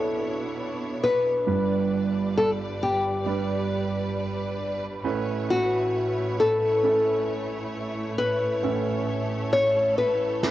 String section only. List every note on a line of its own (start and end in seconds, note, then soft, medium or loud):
0.00 1.44 B2 medium
0.00 1.44 B3 medium
0.00 5.02 D4 soft
0.00 1.45 E4 medium
0.00 1.44 C#5 medium
1.46 5.01 G2 medium
1.46 5.01 G3 medium
1.46 8.59 B4 medium
1.46 5.02 D5 medium
5.04 10.51 A2 medium
5.04 10.51 A3 medium
5.04 10.51 E4 medium
5.04 10.51 C#5 medium
8.65 10.51 A4 medium